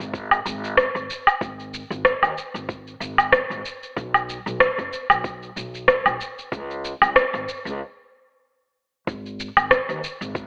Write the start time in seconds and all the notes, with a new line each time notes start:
0.00 G#1, shaker
0.14 kick, shaker
0.31 low woodblock, shaker
0.45 G#1, shaker
0.64 shaker
0.77 kick, cross-stick, shaker
0.95 G#1, shaker
1.10 shaker
1.27 low woodblock, shaker
1.41 G#1, kick, shaker
1.60 shaker
1.74 shaker
1.90 G#1, shaker
2.05 kick, cross-stick, shaker
2.23 D#2, low woodblock, shaker
2.38 shaker
2.54 G#1, shaker
2.69 kick, shaker
2.88 shaker
3.00 G#1, shaker
3.18 low woodblock, shaker
3.33 kick, cross-stick, shaker
3.50 G#1, shaker
3.65 shaker
3.83 shaker
3.97 B1, kick, shaker
4.14 low woodblock, shaker
4.29 shaker
4.46 B1, shaker
4.60 kick, cross-stick, shaker
4.78 F#1, shaker
4.93 shaker
5.10 B1, low woodblock, shaker
5.24 kick, shaker
5.43 shaker
5.56 B1, shaker
5.75 shaker
5.88 kick, cross-stick, shaker
6.06 B1, low woodblock, shaker
6.21 shaker
6.39 shaker
6.52 C#2, kick, shaker
6.71 shaker
6.85 shaker
7.02 C#2, low woodblock, shaker
7.16 kick, cross-stick, shaker
7.34 G#1, shaker
7.49 shaker
7.65 C#2, shaker
9.07 G#1, kick, shaker
9.26 shaker
9.40 shaker
9.57 G#1, low woodblock, shaker
9.71 kick, cross-stick, shaker
9.89 D#2, shaker
10.04 shaker
10.21 G#1, shaker
10.35 kick, shaker